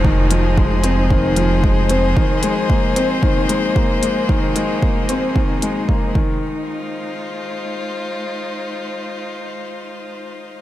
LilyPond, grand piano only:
\new Staff \with { instrumentName = "Grand piano" } { \clef bass \time 4/4 \key f \minor \tempo 4 = 113 ees8 f8 aes8 c'8 ees8 f8 aes8 c'8 | ees8 aes8 bes8 c'8 ees8 aes8 bes8 aes8 | ees8 aes8 bes8 c'8 ees8 aes8 bes8 ees8~ | ees8 r2. r8 |
r1 | }